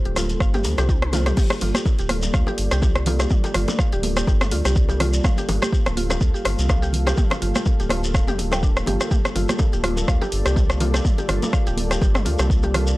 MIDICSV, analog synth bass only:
0, 0, Header, 1, 2, 480
1, 0, Start_track
1, 0, Key_signature, -2, "minor"
1, 0, Tempo, 483871
1, 1362, Time_signature, 4, 2, 24, 8
1, 12871, End_track
2, 0, Start_track
2, 0, Title_t, "Analog synth bass"
2, 0, Program_c, 0, 38
2, 52, Note_on_c, 0, 26, 106
2, 355, Note_off_c, 0, 26, 0
2, 400, Note_on_c, 0, 31, 90
2, 642, Note_on_c, 0, 38, 79
2, 657, Note_off_c, 0, 31, 0
2, 740, Note_off_c, 0, 38, 0
2, 773, Note_on_c, 0, 36, 104
2, 1316, Note_off_c, 0, 36, 0
2, 1605, Note_on_c, 0, 31, 98
2, 1701, Note_off_c, 0, 31, 0
2, 1974, Note_on_c, 0, 26, 109
2, 2276, Note_off_c, 0, 26, 0
2, 2321, Note_on_c, 0, 38, 80
2, 2419, Note_off_c, 0, 38, 0
2, 2563, Note_on_c, 0, 31, 83
2, 2661, Note_off_c, 0, 31, 0
2, 2695, Note_on_c, 0, 36, 85
2, 3236, Note_off_c, 0, 36, 0
2, 3521, Note_on_c, 0, 31, 100
2, 3619, Note_off_c, 0, 31, 0
2, 3894, Note_on_c, 0, 26, 112
2, 4196, Note_off_c, 0, 26, 0
2, 4240, Note_on_c, 0, 31, 95
2, 4482, Note_on_c, 0, 38, 80
2, 4497, Note_off_c, 0, 31, 0
2, 4580, Note_off_c, 0, 38, 0
2, 4616, Note_on_c, 0, 36, 110
2, 5157, Note_off_c, 0, 36, 0
2, 5442, Note_on_c, 0, 31, 100
2, 5540, Note_off_c, 0, 31, 0
2, 5815, Note_on_c, 0, 26, 109
2, 6116, Note_off_c, 0, 26, 0
2, 6160, Note_on_c, 0, 38, 80
2, 6259, Note_off_c, 0, 38, 0
2, 6401, Note_on_c, 0, 31, 81
2, 6500, Note_off_c, 0, 31, 0
2, 6534, Note_on_c, 0, 36, 87
2, 7076, Note_off_c, 0, 36, 0
2, 7362, Note_on_c, 0, 31, 100
2, 7460, Note_off_c, 0, 31, 0
2, 7734, Note_on_c, 0, 26, 111
2, 8215, Note_on_c, 0, 29, 89
2, 8229, Note_off_c, 0, 26, 0
2, 8319, Note_on_c, 0, 26, 83
2, 8334, Note_off_c, 0, 29, 0
2, 8755, Note_off_c, 0, 26, 0
2, 8801, Note_on_c, 0, 31, 98
2, 8900, Note_off_c, 0, 31, 0
2, 9280, Note_on_c, 0, 31, 101
2, 9379, Note_off_c, 0, 31, 0
2, 9655, Note_on_c, 0, 26, 112
2, 9957, Note_off_c, 0, 26, 0
2, 9999, Note_on_c, 0, 38, 80
2, 10099, Note_off_c, 0, 38, 0
2, 10243, Note_on_c, 0, 31, 83
2, 10341, Note_off_c, 0, 31, 0
2, 10375, Note_on_c, 0, 36, 90
2, 10916, Note_off_c, 0, 36, 0
2, 11202, Note_on_c, 0, 31, 100
2, 11300, Note_off_c, 0, 31, 0
2, 11576, Note_on_c, 0, 26, 110
2, 11877, Note_off_c, 0, 26, 0
2, 11919, Note_on_c, 0, 31, 92
2, 12161, Note_on_c, 0, 38, 81
2, 12176, Note_off_c, 0, 31, 0
2, 12260, Note_off_c, 0, 38, 0
2, 12293, Note_on_c, 0, 36, 105
2, 12836, Note_off_c, 0, 36, 0
2, 12871, End_track
0, 0, End_of_file